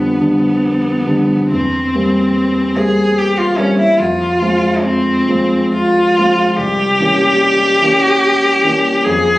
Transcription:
0.00 1.53 F2 soft
0.00 0.14 D3 soft
0.00 0.15 G3 soft
0.00 1.47 B3 medium
0.00 0.15 D4 soft
0.20 1.04 D3 soft
0.20 1.04 G3 soft
0.20 1.04 D4 soft
1.07 1.47 D3 soft
1.07 1.47 G3 soft
1.07 1.47 D4 soft
1.50 1.92 E2 soft
1.50 2.79 C4 medium
1.94 2.73 G3 soft
1.94 2.73 A#3 soft
1.94 2.73 C4 soft
2.76 3.55 G3 soft
2.76 3.55 A#3 soft
2.76 3.55 C4 soft
2.76 3.19 G#4 medium
3.18 3.40 G4 medium
3.38 3.60 F4 medium
3.58 3.97 G3 soft
3.58 3.97 A#3 soft
3.58 3.97 C4 soft
3.58 3.79 C#4 medium
3.79 4.01 E4 medium
3.99 4.40 F2 soft
3.99 4.85 F4 medium
4.41 5.24 F3 soft
4.41 5.25 G#3 soft
4.41 5.25 C4 soft
4.83 5.73 C4 medium
5.29 6.13 F3 soft
5.29 6.13 G#3 soft
5.29 6.13 C4 soft
5.74 6.58 F4 medium
6.18 6.54 F3 soft
6.18 6.55 G#3 soft
6.18 6.55 C4 soft
6.56 6.97 C2 medium
6.56 9.06 G4 medium
7.00 7.77 E3 soft
7.00 7.78 A#3 soft
7.00 7.78 C#4 soft
7.82 8.60 E3 soft
7.82 8.60 A#3 soft
7.82 8.60 C#4 soft
8.64 9.01 E3 soft
8.64 9.02 A#3 soft
8.64 9.02 C#4 soft
9.04 9.38 F2 medium
9.04 9.38 G#4 medium

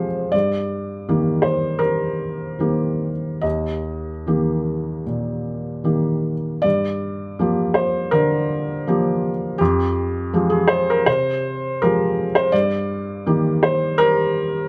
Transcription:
0.00 0.36 C3 soft
0.00 0.35 F3 soft
0.00 0.35 G#3 soft
0.00 0.35 G4 soft
0.00 0.33 C5 medium
0.32 1.05 G2 soft
0.32 1.43 D5 medium
1.09 1.78 D#3 soft
1.09 1.78 A#3 soft
1.09 1.78 G4 soft
1.42 1.80 C5 soft
1.79 3.09 G3 soft
1.79 3.42 A#4 medium
2.59 3.40 D#3 soft
2.59 3.41 A#3 soft
2.59 3.40 G4 soft
3.41 4.24 D#2 soft
3.41 5.84 D#5 medium
4.27 5.02 D#3 soft
4.27 5.02 A#3 soft
4.27 5.02 G4 soft
5.06 6.34 A#2 soft
5.84 6.60 D#3 soft
5.84 6.60 A#3 soft
5.84 6.60 G4 soft
6.62 7.37 G2 soft
6.62 7.75 D5 medium
7.39 8.09 F3 soft
7.39 8.09 A#3 soft
7.39 8.10 G4 soft
7.74 8.12 C5 medium
8.11 9.30 D3 soft
8.11 9.59 A#4 medium
8.87 9.56 F3 soft
8.87 9.56 A#3 soft
8.87 9.56 G4 soft
9.58 10.30 F2 medium
9.58 10.33 G4 medium
10.33 11.03 F3 soft
10.33 11.03 G#3 soft
10.33 11.04 G4 soft
10.50 10.69 G#4 medium
10.68 10.87 C5 medium
10.90 11.08 A#4 medium
11.06 12.24 C3 soft
11.06 11.81 C5 medium
11.82 12.50 F3 soft
11.82 12.50 G#3 soft
11.82 12.50 G4 soft
11.82 12.35 A#4 medium
12.35 12.53 C5 medium
12.52 13.24 G2 medium
12.52 13.62 D5 medium
13.26 13.95 D#3 soft
13.26 13.95 A#3 soft
13.26 13.95 G4 soft
13.63 13.99 C5 medium
13.98 14.68 G3 soft
13.98 14.68 A#4 medium

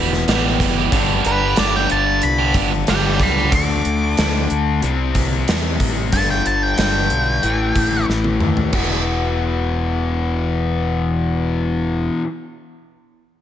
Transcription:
0.00 0.23 E1 medium
0.00 0.90 E2 medium
0.00 0.91 B2 medium
0.00 0.12 E3 medium
0.00 0.91 E3 medium
0.00 0.12 G3 medium
0.00 0.11 E4 medium
0.00 0.11 G4 medium
0.12 muted distorted electric guitar stroke soft
0.12 snare soft
0.28 0.57 A1 medium
0.28 0.90 E2 medium
0.28 0.91 B2 medium
0.28 0.77 E3 medium
0.28 0.76 G3 loud
0.28 0.76 E4 medium
0.28 0.75 G4 loud
0.28 snare loud
0.28 closed hi-hat medium
0.60 0.89 F#1 medium
0.60 kick medium
0.60 closed hi-hat medium
0.77 0.91 E3 medium
0.77 0.91 G3 medium
0.77 0.91 E4 medium
0.77 0.90 G4 medium
0.92 1.22 G1 medium
0.92 1.56 G2 medium
0.92 3.50 G2 medium
0.92 1.57 D3 medium
0.92 3.50 D3 medium
0.92 1.24 G3 medium
0.92 3.51 G3 medium
0.92 1.25 B3 medium
0.92 1.26 D4 medium
0.92 1.26 G4 medium
0.92 kick loud
0.92 closed hi-hat medium
1.24 1.54 G1 medium
1.24 1.42 G3 medium
1.24 1.41 B3 medium
1.24 1.41 D4 medium
1.24 1.40 G4 medium
1.24 1.57 B4 medium
1.24 closed hi-hat medium
1.41 1.57 G3 medium
1.41 1.57 B3 medium
1.41 1.57 D4 medium
1.41 1.58 G4 medium
1.56 1.87 G1 medium
1.56 2.22 G2 medium
1.56 2.22 D3 medium
1.56 1.88 G3 medium
1.56 1.89 B3 medium
1.56 1.89 D4 medium
1.56 1.90 G4 medium
1.56 1.74 D5 medium
1.56 snare loud
1.56 closed hi-hat medium
1.76 1.90 G5 medium
1.89 2.20 G1 medium
1.89 2.06 G3 medium
1.89 2.06 B3 medium
1.89 2.05 D4 medium
1.89 2.05 G4 medium
1.89 2.22 A5 medium
1.89 closed hi-hat medium
2.06 muted distorted electric guitar stroke soft
2.22 2.52 C2 medium
2.22 2.54 B5 medium
2.22 closed hi-hat medium
2.39 2.54 G3 medium
2.39 2.54 B3 medium
2.39 2.55 D4 medium
2.39 2.56 G4 medium
2.54 2.84 G1 medium
2.54 2.71 G3 medium
2.54 2.71 B3 medium
2.54 2.71 D4 medium
2.54 2.71 G4 medium
2.54 kick medium
2.54 closed hi-hat soft
2.72 muted distorted electric guitar stroke soft
2.87 3.17 G1 medium
2.87 3.51 G2 medium
2.87 3.51 D3 medium
2.87 3.38 G3 medium
2.87 3.37 B3 medium
2.87 3.37 D4 medium
2.87 3.36 G4 medium
2.87 3.21 D5 medium
2.87 3.20 B5 medium
2.87 snare loud
2.87 closed hi-hat medium
3.20 3.49 C#2 medium
3.20 3.51 B5 medium
3.20 3.53 D6 medium
3.20 kick medium
3.20 closed hi-hat soft
3.37 3.52 G3 medium
3.37 3.52 B3 medium
3.37 3.51 D4 medium
3.37 3.51 G4 medium
3.52 3.82 D2 medium
3.52 4.80 D3 medium
3.52 4.81 A3 medium
3.52 4.81 D4 medium
3.52 4.80 D6 loud
3.52 kick loud
3.52 closed hi-hat medium
3.85 4.15 D2 medium
3.85 closed hi-hat medium
4.17 4.48 D2 medium
4.17 snare loud
4.17 closed hi-hat medium
4.50 4.80 D2 medium
4.50 closed hi-hat medium
4.82 5.44 C2 medium
4.82 6.11 C3 medium
4.82 6.11 G3 medium
4.82 6.12 C4 medium
4.82 closed hi-hat medium
5.15 kick medium
5.15 closed hi-hat medium
5.48 5.78 E2 medium
5.48 snare loud
5.48 closed hi-hat medium
5.80 6.10 A1 medium
5.80 kick medium
5.80 closed hi-hat medium
6.12 6.42 G1 medium
6.12 7.41 G2 medium
6.12 7.42 D3 medium
6.12 7.43 G3 medium
6.12 6.29 A5 loud
6.12 kick loud
6.12 closed hi-hat medium
6.30 6.47 G5 medium
6.46 6.75 G1 medium
6.46 6.63 A5 medium
6.46 closed hi-hat medium
6.63 6.78 G5 medium
6.78 7.08 G1 medium
6.78 8.05 G5 medium
6.78 snare loud
6.78 closed hi-hat medium
7.10 7.40 B1 medium
7.10 closed hi-hat medium
7.43 7.73 A1 medium
7.43 8.72 A2 medium
7.43 8.73 E3 medium
7.43 8.73 A3 medium
7.43 closed hi-hat medium
7.76 8.06 A1 medium
7.76 kick medium
7.76 closed hi-hat soft
8.09 8.39 A1 medium
8.09 snare soft
8.24 high tom soft
8.40 8.71 D#2 medium
8.40 mid tom medium
8.57 floor tom medium
8.73 12.08 E1 medium
8.73 12.23 E2 medium
8.73 12.25 B2 medium
8.73 kick loud
8.73 crash medium
8.77 12.27 E3 medium

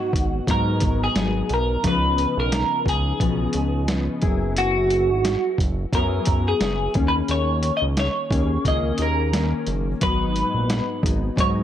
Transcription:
0.00 0.46 G#2 medium
0.00 0.46 F#3 medium
0.00 0.48 B3 medium
0.00 0.48 D#4 medium
0.00 0.51 F#4 medium
0.13 0.41 G#1 medium
0.13 kick medium
0.13 closed hi-hat medium
0.47 1.14 G#2 medium
0.47 0.83 G#2 medium
0.47 1.15 F#3 medium
0.47 1.17 B3 medium
0.47 1.17 D#4 medium
0.47 1.03 A#4 medium
0.47 kick medium
0.47 closed hi-hat medium
0.80 1.09 G#1 medium
0.80 kick medium
0.80 closed hi-hat medium
1.04 1.53 G#4 medium
1.15 1.43 G#1 medium
1.15 1.84 G#2 soft
1.15 1.84 F#3 medium
1.15 1.85 B3 medium
1.15 1.86 D#4 medium
1.15 snare medium
1.15 closed hi-hat medium
1.49 1.77 B1 medium
1.49 closed hi-hat medium
1.54 1.87 A#4 medium
1.83 2.26 C#2 loud
1.83 3.19 C#3 medium
1.83 3.20 F3 medium
1.83 3.21 B3 medium
1.83 3.20 D#4 medium
1.83 kick loud
1.83 closed hi-hat medium
1.88 2.40 B4 loud
2.18 closed hi-hat medium
2.37 2.64 B1 medium
2.37 2.89 A#4 medium
2.52 snare loud
2.52 closed hi-hat medium
2.86 3.13 C#2 loud
2.86 3.86 G#4 medium
2.86 kick medium
2.86 closed hi-hat medium
3.20 3.47 B1 medium
3.20 3.86 C#3 medium
3.20 3.87 F3 medium
3.20 3.89 B3 medium
3.20 3.89 D#4 medium
3.20 kick medium
3.20 closed hi-hat medium
3.53 4.09 C#2 medium
3.53 closed hi-hat medium
3.88 4.22 C#3 medium
3.88 4.23 F3 medium
3.88 4.23 B3 medium
3.88 4.23 D#4 medium
3.88 snare medium
3.88 closed hi-hat medium
4.22 5.11 F#1 loud
4.22 5.92 F#3 medium
4.22 5.93 B3 medium
4.22 5.93 E4 medium
4.22 5.94 G#4 medium
4.22 kick loud
4.22 closed hi-hat medium
4.57 5.56 F#4 loud
4.57 closed hi-hat medium
4.90 closed hi-hat medium
5.10 5.37 G#1 medium
5.25 snare loud
5.25 closed hi-hat medium
5.58 5.86 F#1 loud
5.58 kick medium
5.58 closed hi-hat medium
5.93 6.20 F#2 medium
5.93 6.95 F#3 medium
5.93 6.96 B3 medium
5.93 6.96 E4 medium
5.93 6.94 G#4 medium
5.93 6.48 A#4 medium
5.93 kick medium
5.93 closed hi-hat medium
6.25 6.54 F#2 medium
6.25 kick medium
6.25 closed hi-hat medium
6.48 6.93 G#4 medium
6.61 6.88 F#1 medium
6.61 snare medium
6.61 closed hi-hat medium
6.94 7.23 D#2 loud
6.94 8.35 D#3 soft
6.94 8.31 A#3 medium
6.94 8.30 C#4 medium
6.94 8.30 G#4 medium
6.94 kick loud
6.94 closed hi-hat medium
7.08 7.14 B4 medium
7.28 7.71 D#2 loud
7.28 7.76 C#5 medium
7.28 closed hi-hat medium
7.63 closed hi-hat medium
7.77 7.83 D#5 medium
7.82 8.09 C#2 medium
7.97 8.68 C#5 medium
7.97 snare loud
7.97 closed hi-hat medium
8.31 8.58 D#2 loud
8.31 8.64 A#3 soft
8.31 8.64 C#4 soft
8.31 8.65 G#4 soft
8.31 kick medium
8.31 closed hi-hat medium
8.65 8.92 C#2 medium
8.65 9.32 D#3 medium
8.65 9.33 A#3 medium
8.65 9.33 C#4 medium
8.65 9.35 G#4 medium
8.65 9.02 D#5 medium
8.65 kick medium
8.65 closed hi-hat medium
8.98 9.54 D#2 medium
8.98 closed hi-hat medium
9.02 9.65 A#4 medium
9.33 10.01 D#3 medium
9.33 10.01 A#3 medium
9.33 10.02 C#4 medium
9.33 10.04 G#4 medium
9.33 snare medium
9.33 closed hi-hat medium
9.67 9.95 F#1 medium
9.67 closed hi-hat medium
10.01 10.44 G#1 medium
10.01 11.03 G#2 medium
10.01 11.04 F#3 medium
10.01 11.04 B3 medium
10.01 11.02 D#4 medium
10.01 11.00 B4 loud
10.01 kick loud
10.01 closed hi-hat medium
10.36 closed hi-hat medium
10.54 10.82 A#1 medium
10.70 snare loud
10.70 closed hi-hat medium
11.03 11.31 G#1 medium
11.03 11.36 F#3 soft
11.03 11.37 B3 soft
11.03 11.37 D#4 soft
11.03 kick medium
11.03 closed hi-hat medium
11.36 11.63 G#2 medium
11.36 11.63 G#2 loud
11.36 11.63 F#3 medium
11.36 11.63 B3 medium
11.36 11.63 D#4 medium
11.36 kick medium
11.36 closed hi-hat medium
11.40 11.49 C#5 medium

